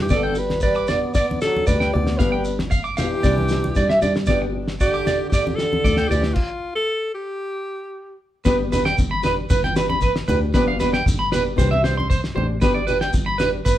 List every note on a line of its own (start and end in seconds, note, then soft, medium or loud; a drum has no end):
0.00 0.13 E3 medium
0.00 0.15 G4 medium
0.09 1.04 G1 medium
0.09 0.41 D3 medium
0.09 0.26 B3 medium
0.09 0.26 D4 medium
0.09 0.27 G4 medium
0.09 0.20 D5 medium
0.09 kick loud
0.09 snare medium
0.09 shekere medium
0.14 0.39 A4 medium
0.23 0.33 G5 medium
0.35 0.53 D4 soft
0.35 0.52 G4 soft
0.35 0.62 B4 loud
0.35 shekere medium
0.39 0.63 G3 medium
0.50 snare medium
0.50 high conga medium
0.60 0.92 G3 medium
0.60 0.90 B4 loud
0.60 0.73 D5 medium
0.60 kick medium
0.60 shekere medium
0.74 0.86 D6 medium
0.74 shekere soft
0.87 1.16 B3 medium
0.87 1.05 D4 soft
0.87 1.05 G4 soft
0.87 0.99 D5 medium
0.87 1.14 D5 medium
0.87 snare medium
0.87 low conga medium
0.87 shekere medium
1.14 1.41 B3 medium
1.14 1.39 D5 loud
1.14 1.25 D5 medium
1.14 kick medium
1.14 snare medium
1.14 shekere loud
1.31 high conga medium
1.41 1.67 F#3 medium
1.41 1.58 D4 soft
1.41 1.57 G4 medium
1.41 1.66 A4 loud
1.41 snare medium
1.41 shekere medium
1.56 high conga medium
1.67 1.91 D2 loud
1.67 1.93 G3 medium
1.67 1.92 B4 medium
1.67 1.77 D5 medium
1.67 kick medium
1.67 snare soft
1.67 low conga medium
1.67 shekere medium
1.80 1.90 G5 medium
1.80 snare medium
1.93 2.18 D2 loud
1.93 2.23 B3 medium
1.93 2.10 D4 soft
1.93 2.09 G4 medium
1.93 2.19 D5 loud
1.93 muted clean electric guitar stroke medium
1.93 low conga medium
2.07 snare medium
2.07 shekere soft
2.17 3.14 G1 loud
2.17 2.35 F3 medium
2.17 2.35 B3 medium
2.17 2.36 D4 medium
2.17 2.36 G4 medium
2.17 2.58 B4 medium
2.17 2.29 F5 medium
2.17 kick loud
2.17 snare medium
2.17 shekere medium
2.22 2.60 G3 medium
2.32 2.42 G5 medium
2.44 2.62 B3 soft
2.44 2.62 D4 soft
2.44 muted nylon-string guitar stroke soft
2.44 shekere medium
2.59 snare medium
2.59 high conga medium
2.71 2.81 F5 medium
2.71 kick medium
2.71 shekere loud
2.84 2.94 D6 medium
2.84 shekere soft
2.97 3.99 E3 medium
2.97 3.15 B3 soft
2.97 3.15 D4 soft
2.97 3.99 G4 loud
2.97 3.15 G4 medium
2.97 3.07 F5 medium
2.97 snare medium
2.97 low conga medium
2.97 shekere medium
3.23 3.71 C2 loud
3.23 3.40 E3 medium
3.23 3.40 C4 medium
3.23 3.41 D4 medium
3.23 3.41 G4 medium
3.23 3.34 D5 medium
3.23 kick medium
3.23 snare medium
3.23 shekere medium
3.38 high conga medium
3.48 3.67 D4 medium
3.48 3.67 G4 medium
3.48 snare medium
3.48 shekere medium
3.53 3.68 C4 soft
3.64 high conga medium
3.75 4.00 G2 medium
3.75 3.87 D5 medium
3.75 kick medium
3.75 snare soft
3.75 low conga medium
3.75 shekere medium
3.89 3.99 E5 medium
3.89 snare medium
4.01 4.26 G2 medium
4.01 4.19 C4 soft
4.01 4.19 D4 medium
4.01 4.18 G4 medium
4.01 4.12 D5 medium
4.01 low conga medium
4.01 shekere medium
4.15 snare medium
4.15 shekere soft
4.26 5.22 G1 medium
4.26 4.44 B3 medium
4.26 4.45 D4 medium
4.26 4.45 G4 loud
4.26 4.38 D5 medium
4.26 kick medium
4.26 snare medium
4.26 shekere medium
4.42 muted clean electric guitar stroke medium
4.52 4.71 D4 soft
4.52 4.69 G4 medium
4.68 snare medium
4.80 5.30 D3 medium
4.80 5.29 G4 loud
4.80 4.91 D5 medium
4.80 kick medium
4.80 shekere medium
4.93 5.04 D6 medium
4.93 shekere soft
5.06 5.23 D4 soft
5.06 5.22 G4 medium
5.06 5.17 D5 medium
5.06 snare medium
5.06 low conga medium
5.06 shekere medium
5.29 5.57 G4 medium
5.29 kick medium
5.29 snare medium
5.29 shekere loud
5.33 5.58 D3 medium
5.33 5.43 D5 medium
5.47 high conga medium
5.55 6.11 D3 medium
5.55 5.75 G4 medium
5.55 6.09 A4 loud
5.55 snare medium
5.60 5.75 D4 soft
5.60 shekere medium
5.73 high conga medium
5.84 6.09 D2 loud
5.84 5.95 D5 medium
5.84 kick medium
5.84 low conga medium
5.84 shekere medium
5.97 6.08 G5 medium
5.97 snare medium
6.08 6.35 D2 loud
6.08 6.37 E3 medium
6.08 6.35 G4 loud
6.08 6.27 G4 medium
6.08 6.21 D5 medium
6.08 shekere medium
6.12 6.28 D4 soft
6.12 low conga medium
6.23 snare medium
6.23 shekere soft
6.34 6.74 F4 medium
6.34 kick loud
6.34 crash medium
6.75 7.12 A4 loud
7.14 8.15 G4 medium
8.45 8.93 G1 loud
8.45 8.61 B3 loud
8.45 8.62 D4 medium
8.45 8.62 G4 medium
8.45 8.56 B4 medium
8.45 kick loud
8.45 snare medium
8.45 shekere loud
8.72 8.89 D4 medium
8.72 8.88 G4 medium
8.72 8.82 B4 medium
8.72 snare soft
8.72 high conga medium
8.72 low conga medium
8.72 shekere medium
8.85 8.95 G5 medium
8.85 snare medium
8.98 9.45 G1 medium
8.98 kick medium
8.98 high conga medium
8.98 shekere loud
9.11 9.21 B5 medium
9.23 9.41 D4 soft
9.23 9.39 G4 medium
9.23 9.34 B4 loud
9.23 snare medium
9.23 low conga medium
9.23 shekere medium
9.50 10.20 G1 medium
9.50 9.60 B4 medium
9.50 kick medium
9.50 high conga medium
9.50 low conga medium
9.50 shekere loud
9.64 9.73 G5 medium
9.64 snare soft
9.64 high conga medium
9.76 9.93 D4 soft
9.76 9.92 G4 medium
9.76 9.86 B4 medium
9.76 snare medium
9.76 shekere medium
9.90 9.99 B5 medium
9.90 high conga medium
10.01 10.12 B4 medium
10.01 kick medium
10.01 shekere medium
10.16 snare medium
10.28 10.52 D2 loud
10.28 10.46 D4 medium
10.28 10.45 G4 medium
10.28 10.38 B4 medium
10.28 low conga medium
10.28 shekere medium
10.54 11.01 G1 loud
10.54 10.70 F3 medium
10.54 10.70 B3 loud
10.54 10.70 D4 medium
10.54 10.71 G4 loud
10.54 10.64 B4 medium
10.54 kick loud
10.54 snare medium
10.54 shekere medium
10.68 10.77 F5 medium
10.80 10.97 B3 medium
10.80 10.96 D4 medium
10.80 10.96 G4 medium
10.80 10.90 B4 medium
10.80 snare soft
10.80 high conga medium
10.80 low conga medium
10.80 shekere medium
10.93 11.03 G5 loud
10.93 snare medium
11.06 11.53 G1 medium
11.06 kick loud
11.06 high conga medium
11.06 shekere loud
11.19 11.29 B5 medium
11.32 11.49 B3 soft
11.32 11.48 D4 medium
11.32 11.48 G4 medium
11.32 11.42 B4 medium
11.32 snare medium
11.32 low conga medium
11.32 shekere medium
11.56 12.28 C2 loud
11.56 11.73 E3 medium
11.56 11.73 C4 medium
11.56 11.73 D4 medium
11.56 11.74 G4 medium
11.56 11.68 C5 medium
11.56 kick medium
11.56 snare soft
11.56 high conga medium
11.56 low conga medium
11.56 shekere medium
11.71 11.81 E5 medium
11.71 high conga medium
11.82 12.00 C4 soft
11.82 12.00 D4 medium
11.82 11.99 G4 medium
11.82 11.94 C5 medium
11.82 snare medium
11.82 shekere medium
11.97 12.07 C6 medium
11.97 high conga medium
12.10 12.20 C5 medium
12.10 kick medium
12.10 shekere medium
12.24 snare medium
12.35 12.59 A1 loud
12.35 12.52 C4 soft
12.35 12.52 D4 medium
12.35 12.51 G4 medium
12.35 12.46 C5 medium
12.35 low conga medium
12.61 13.09 G1 loud
12.61 12.77 B3 medium
12.61 12.78 D4 medium
12.61 12.78 G4 loud
12.61 12.72 B4 medium
12.61 kick loud
12.61 snare medium
12.61 shekere medium
12.74 12.84 D5 medium
12.87 13.04 D4 medium
12.87 13.04 G4 medium
12.87 12.97 B4 medium
12.87 low conga medium
12.87 shekere medium
13.01 13.11 G5 medium
13.01 snare medium
13.13 13.60 G1 loud
13.13 kick loud
13.13 high conga medium
13.13 shekere medium
13.26 13.36 B5 medium
13.38 13.56 G4 medium
13.38 13.49 B4 loud
13.38 snare medium
13.38 low conga medium
13.38 shekere medium
13.42 13.57 D4 medium
13.65 13.78 G1 loud
13.65 13.75 B4 medium
13.65 kick loud
13.65 snare soft
13.65 high conga medium
13.65 low conga medium
13.65 shekere loud